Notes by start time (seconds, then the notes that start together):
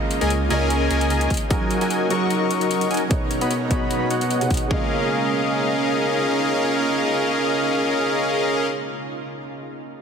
Already playing: C#3 G#3 A#3 D#4 F4 D#5, downlifter
0.11 closed hi-hat
0.21 C#2 C#4 G#4 A#4 D#5 G#5, closed hi-hat
0.30 closed hi-hat
0.49 C#2 C#3 G#3 A#3 C#4 F4 G#4 A#4 D#5 G#5, closed hi-hat
0.53 D#5
0.70 closed hi-hat
0.90 C#2 C#4 G#4 A#4 D#5 G#5, closed hi-hat
1.01 closed hi-hat
1.10 closed hi-hat
1.21 closed hi-hat
1.30 F#3 C#4 A#4, kick, closed hi-hat
1.34 closed hi-hat
1.37 closed hi-hat
1.49 F#3 C#4 D#4 F#4 G#4 A#4 D#5 G#5, kick, closed hi-hat
1.71 closed hi-hat
1.81 F#3 F#4 A#4 D#5 G#5, closed hi-hat
1.90 closed hi-hat
2.09 F#3 C#4 D#4 F#4 G#4 A#4 D#5 C#6, closed hi-hat
2.13 A#4
2.30 closed hi-hat
2.51 closed hi-hat
2.61 closed hi-hat
2.71 closed hi-hat
2.81 closed hi-hat
2.91 F#3 F#4 A#4 D#5 G#5, closed hi-hat
2.94 closed hi-hat
2.97 closed hi-hat
3.09 B2 B3 D#4 G#4, kick, closed hi-hat
3.13 C#5
3.31 closed hi-hat
3.41 B3 F#4 C#5 D#5 B5, closed hi-hat
3.51 closed hi-hat
3.68 B2 B3 D#4 F#4 G#4 C#5 D#5 B5, kick, closed hi-hat
3.73 C#5
3.91 closed hi-hat
4.10 B3 F#4 C#5 D#5 F#5, closed hi-hat
4.21 closed hi-hat
4.30 closed hi-hat
4.41 B2 B3 D#4 G#4 F#5, closed hi-hat
4.50 kick, closed hi-hat
4.54 closed hi-hat
4.57 closed hi-hat
4.68 C#3 G#3 A#3 C#4 D#4 F4 G#4 A#4 D#5 F5, kick
4.72 F4 D#5